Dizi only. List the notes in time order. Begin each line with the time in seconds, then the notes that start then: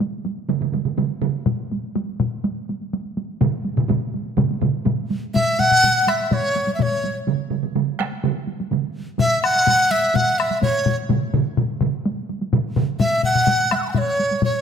5.35 E5
5.59 F#5
6.09 E5
6.33 C#5
6.75 E5
6.82 C#5
9.20 E5
9.43 F#5
9.91 E5
10.16 F#5
10.39 E5
10.62 C#5
13.00 E5
13.25 F#5
13.72 E5
13.76 E6 F#6
13.83 B5 C#6
13.88 F#5 G#5
13.94 C#5 E5
14.45 C#5